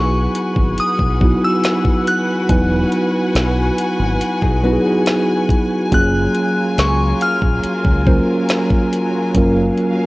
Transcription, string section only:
0.00 5.88 F#4 medium
0.00 5.88 B4 medium
0.00 5.88 F#5 medium
0.00 10.06 G#5 medium
5.92 10.06 F#3 medium
5.92 9.32 F4 medium
5.92 10.06 A#4 medium
9.35 10.06 F5 medium

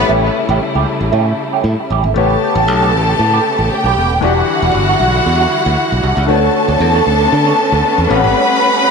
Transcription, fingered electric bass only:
0.09 0.28 A1 loud
0.49 0.58 A1 medium
0.75 0.84 C#2 medium
1.01 1.10 A1 medium
1.13 1.32 A2 medium
1.64 1.74 A2 medium
1.90 2.05 A1 medium
2.04 2.13 G#1 medium
2.16 2.35 A1 loud
2.55 2.68 A1 loud
2.68 2.93 B1 medium
2.93 3.12 A1 medium
3.19 3.38 A2 medium
3.59 3.68 A1 medium
3.84 3.93 B1 medium
3.97 4.11 E1 medium
4.11 4.20 D#1 medium
4.22 4.42 E1 loud
4.62 4.71 E1 medium
4.75 4.94 G1 medium
5.00 5.19 B1 medium
5.26 5.45 E2 medium
5.66 5.75 D2 medium
5.92 6.01 B1 medium
6.03 6.14 C2 loud
6.17 6.26 C#2 loud
6.28 6.48 D2 medium
6.68 6.77 D2 medium
6.80 6.99 E2 loud
7.07 7.26 D2 medium
7.32 7.51 D3 loud
7.72 7.81 D2 medium
7.98 8.07 E2 medium
8.11 8.26 A1 loud
8.24 8.33 G#1 medium

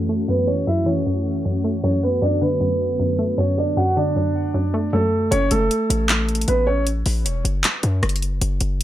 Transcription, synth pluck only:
0.00 0.27 F#2 medium
0.00 0.28 E3 medium
0.09 1.06 A3 medium
0.28 0.66 F#2 medium
0.67 1.05 F#2 medium
0.86 1.83 E3 medium
1.07 1.44 F#2 medium
1.45 1.82 F#2 medium
1.64 2.22 A3 medium
1.84 2.21 F#2 medium
2.22 2.59 F#2 medium
2.42 3.38 D3 medium
2.60 2.98 F#2 medium
3.00 3.37 F#2 medium
3.19 4.16 A3 medium
3.38 3.76 F#2 medium
3.77 4.15 F#2 medium
3.97 4.93 D3 medium
4.16 4.53 F#2 medium
4.54 4.92 F#2 medium
4.74 5.32 A3 medium
4.93 5.32 F#2 medium

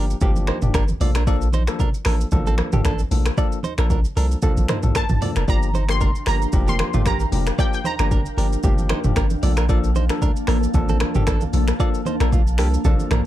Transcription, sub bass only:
0.00 0.15 G1 medium
0.22 0.51 G1 medium
0.63 0.71 F1 medium
0.75 0.94 G1 loud
1.01 1.68 A#1 loud
2.06 2.25 A1 medium
2.32 2.62 A1 loud
2.73 2.82 G1 medium
2.85 3.04 A1 loud
3.11 3.30 A#1 medium
3.78 4.06 A#1 loud
4.17 4.36 C2 medium
4.57 4.66 A#1 medium
4.84 4.92 A#1 medium
5.10 5.19 A1 medium
5.37 5.45 F1 loud
5.48 6.12 G1 loud
6.27 6.46 G1 medium
6.53 6.83 F1 loud
6.94 7.08 G1 medium
7.06 7.25 A#1 loud
7.32 7.51 F1 loud
8.00 8.27 G1 loud
8.37 8.57 G1 loud
8.64 8.93 G1 medium
9.05 9.13 F1 medium
9.17 9.36 G1 loud
9.43 10.10 A#1 loud
10.48 10.67 A1 medium
10.74 11.04 A1 loud
11.15 11.29 G1 medium
11.27 11.46 A1 medium
11.53 11.72 A#1 loud
12.21 12.60 A#1 loud
12.59 12.78 C2 loud
12.85 12.95 A#1 loud
13.11 13.22 A#1 loud

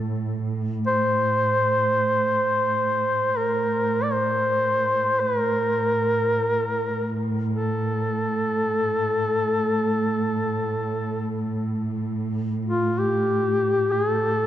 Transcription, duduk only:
0.87 3.39 C5 medium
3.37 4.05 A#4 medium
4.03 4.14 D5 medium
4.13 5.22 C5 medium
5.20 5.39 B4 medium
5.39 7.20 A#4 medium
7.53 11.46 A4 medium
12.65 13.00 F4 medium
12.99 13.93 G4 medium
13.92 14.11 G#4 medium
14.11 14.47 A4 medium

